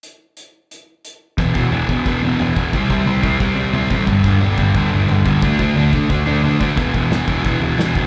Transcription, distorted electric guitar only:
\new Staff \with { instrumentName = "Distorted electric guitar" } { \clef bass \time 4/4 \key e \minor \tempo 4 = 178 r1 | <e, b, e>8 <e, b, e>8 <e, b, e>8 <e, b, e>8 <e, b, e>8 <e, b, e>8 <e, b, e>8 <e, b, e>8 | <c g c'>8 <c g c'>8 <c g c'>8 <c g c'>8 <c g c'>8 <c g c'>8 <c g c'>8 <c g c'>8 | <g, d g>8 <g, d g>8 <g, d g>8 <g, d g>8 <g, d g>8 <g, d g>8 <g, d g>8 <g, d g>8 |
<d a d'>8 <d a d'>8 <d a d'>8 <d a d'>8 <d a d'>8 <d a d'>8 <d a d'>8 <d a d'>8 | <e, b, e>8 <e, b, e>8 <e, b, e>8 <e, b, e>8 <e, b, e>8 <e, b, e>8 <e, b, e>8 <e, b, e>8 | }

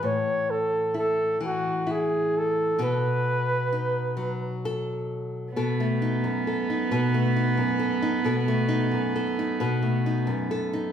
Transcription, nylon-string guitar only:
\new Staff \with { instrumentName = "Nylon-string guitar" } { \time 6/8 \key b \mixolydian \tempo 4. = 44 << { r4 e'4 e'4 | a'4 dis'4 a'4 | a'16 a16 dis'8 a'16 dis'16 b'16 a16 dis'8 a'16 dis'16 | a'16 a16 dis'8 a'16 dis'16 b'16 a16 dis'8 a'16 dis'16 | } \\ { <a, e>4. e4. | b,4. fis4. | b,8. fis,8. b,8. fis,8. | b,8. fis,8. b,8. fis,8. | } >> }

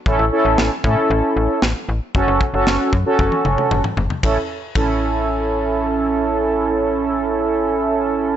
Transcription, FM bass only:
\new Staff \with { instrumentName = "FM bass" } { \clef bass \time 4/4 \key a \major \tempo 4 = 115 a,,16 a,,16 r16 a,,16 a,,16 r16 a,16 r16 a,,16 r16 a,,16 r16 a,,16 r16 a,,16 r16 | fis,,16 fis,,16 r16 fis,,16 fis,,16 r16 fis,16 r16 fis,,16 r16 fis,,16 r16 fis,,16 r16 fis,,16 r16 | a,,16 r8. a,,2.~ | a,,1 | }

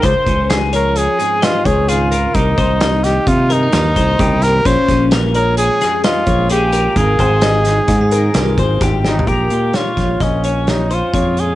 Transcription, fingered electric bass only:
\new Staff \with { instrumentName = "Fingered electric bass" } { \clef bass \time 5/4 \key bes \dorian \tempo 4 = 130 des,16 r16 des,2 r4 des,4. | c,8 c,4. c4 ees,8 c,8 c,4 | bes,,16 r16 bes,,2 r4 bes,,4. | aes,,8 aes,,4. aes,4 c,8 aes,,8 aes,,4 |
bes,,8 bes,8 r8 bes,,8 bes,,2 f,4 | }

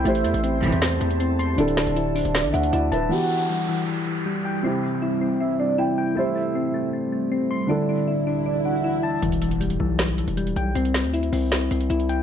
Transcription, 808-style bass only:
\new Staff \with { instrumentName = "808-style bass" } { \clef bass \time 4/4 \key e \minor \tempo 4 = 157 a,,8 e,16 a,,8. a,,16 e,8. e,4. | d,,8. d,,4 d,,8 a,,16 d,8 d,8 d,,8 | r1 | r1 |
r1 | r1 | e,,4. b,,4~ b,,16 e,,8. b,,8 | c,8. d,8. c,4 c,8 c,4 | }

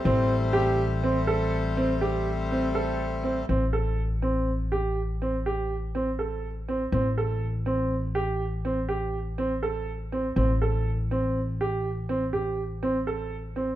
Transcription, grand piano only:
\new Staff \with { instrumentName = "Grand piano" } { \time 7/4 \key a \minor \tempo 4 = 122 c'4 g'4 c'8 a'4 c'8 g'4 c'8 a'4 c'8 | c'8 a'4 c'4 g'4 c'8 g'4 c'8 a'4 c'8 | c'8 a'4 c'4 g'4 c'8 g'4 c'8 a'4 c'8 | c'8 a'4 c'4 g'4 c'8 g'4 c'8 a'4 c'8 | }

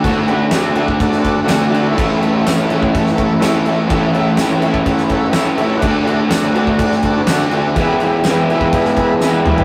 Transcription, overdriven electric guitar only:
\new Staff \with { instrumentName = "Overdriven electric guitar" } { \time 4/4 \key a \major \tempo 4 = 124 <d a d' fis'>8 <a d' fis'>8 <d a d' fis'>8 <a d' fis'>4. <d a d' fis'>8 <a d' fis'>8 | <a, e a cis' e'>8 <a cis' e'>8 <e a cis' e'>8 <a cis' e'>4. <a, e a cis' e'>8 <a cis' e'>8 | <a, e a cis' e'>8 <a cis' e'>8 <e a cis' e'>8 <a cis' e'>4. <a, e a cis' e'>8 <a cis' e'>8 | <d a d' fis'>8 <a d' fis'>8 <d a d' fis'>8 <a d' fis'>4. <d a d' fis'>8 <a d' fis'>8 |
<e gis b e'>8 <gis b e'>8 <e gis b e'>8 <gis b e'>4. <e gis b e'>8 <gis b e'>8 | }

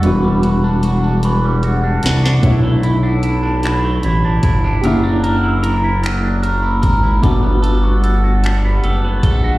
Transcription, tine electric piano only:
\new Staff \with { instrumentName = "Tine electric piano" } { \time 6/8 \key b \minor \tempo 4. = 50 <g b d' fis'>2. | <a d' e' cis''>2. | <ais d' e' g'>2. | <a b d' fis'>2. | }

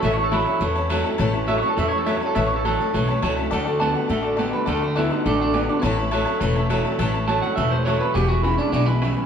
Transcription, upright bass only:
\new Staff \with { instrumentName = "Upright bass" } { \clef bass \time 4/4 \key a \major \tempo 4 = 207 a,,2 e,2 | a,,2 e,2 | a,,2 b,,4 cis,4 | d,2 a,,2 |
d,2 a,,2 | a,,2 e,,2 | a,,2 e,,2 | e,,2 b,,2 | }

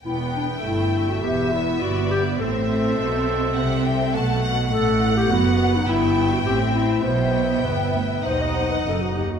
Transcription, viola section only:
\new Staff \with { instrumentName = "Viola section" } { \time 4/4 \key e \minor \tempo 4 = 102 b4 a4 b2 | c'8 c'2~ c'8 a4 | a4 b4 b4 c'4 | b2 dis'4. r8 | }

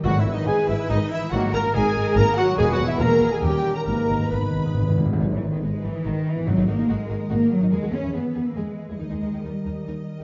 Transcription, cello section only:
\new Staff \with { instrumentName = "Cello section" } { \clef bass \time 3/4 \key gis \minor \tempo 4 = 142 gis,16 gis,16 gis,16 gis,16 gis,16 r16 gis,16 r16 gis,16 r8 gis,16 | gis,16 gis,16 gis,16 gis,16 gis,16 r16 gis,16 r16 gis,16 r8 gis,16 | e,16 e,16 e,16 e,16 e,16 r16 e,16 r16 dis,16 r8 dis,16 | gis,16 gis,16 gis,16 gis,16 gis,16 r16 gis,16 r16 gis,16 r8 gis,16 |
\tuplet 3/2 { fis8 e8 dis8 } gis8 e8 dis8 e8 | fis8 ais8 gis4 ais8 fis8 | gis8 cis'8 b8. ais16 gis8. gis16 | gis4 g4. r8 | }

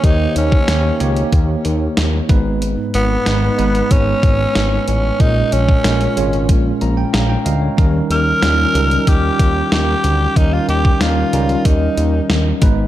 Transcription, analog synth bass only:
\new Staff \with { instrumentName = "Analog synth bass" } { \clef bass \time 4/4 \key ees \mixolydian \tempo 4 = 93 ees,8 ees,8 ees,8 des,8 ees,8 ees,8 ees,8 aes,,8~ | aes,,8 aes,,8 aes,,8 aes,,8 aes,,8 aes,,8 aes,,8 a,,8 | bes,,8 bes,,8 bes,,8 aes,,8 bes,,8 bes,,8 bes,,8 d,8 | ees,8 ees,8 ees,8 des,8 ees,8 ees,8 ees,8 d,8 |
ees,8 ees,8 ees,8 des,8 ees,8 ees,8 ees,8 aes,,8 | }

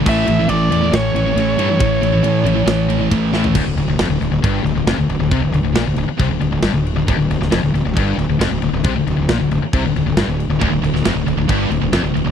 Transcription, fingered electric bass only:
\new Staff \with { instrumentName = "Fingered electric bass" } { \clef bass \time 4/4 \key a \phrygian \tempo 4 = 136 a,,8 a,,8 a,,8 e,8 a,,8 a,,8 a,,8 g,8 | a,,4 a,8 a,,8 a,,4 a,,4 | \key d \minor d,,16 d,,16 d,,16 d,,16 f,,16 d,,16 d,,16 d,,16 g,,8 d,,16 d,,16 f,,16 d,,16 d,,16 d,,16 | c,16 d,,16 d,,16 d,,16 bes,,16 d,,16 d,,16 r16 c,16 d,,16 d,,16 d,,16 g,,16 d,,8 d,,16 |
d,,16 d,,16 d,,16 d,,16 f,,16 d,,16 d,,16 d,,16 g,,8 d,,16 d,,16 f,,16 d,,16 d,,16 d,,16 | c,16 d,,16 d,,16 d,,16 bes,,16 d,,16 d,,16 r16 c,16 d,,16 d,,16 d,,16 g,,16 d,,8 d,,16 | d,,16 d,,16 d,,16 d,,16 f,,16 d,,16 d,,16 d,,16 g,,8 d,,16 d,,16 f,,16 d,,16 d,,16 d,,16 | }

